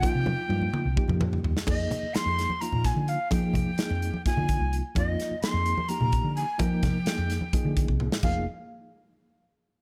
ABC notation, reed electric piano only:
X:1
M:7/8
L:1/8
Q:1/4=128
K:Fdor
V:1 name="Reed electric piano"
[F,B,EF]2 [F,B,EF]2 [F,B,EG]2 z | [F,B,EA]2 [F,B,EA]2 [F,B,EF]2 z | [F,B,EA]2 [F,B,EA]2 [F,B,EF]2 z | [F,B,EF]2 [F,B,EA]2 [F,B,EG]2 z |
[F,B,EB]2 [F,B,EA]2 [F,B,EA]2 z | [F,B,EA] z6 |]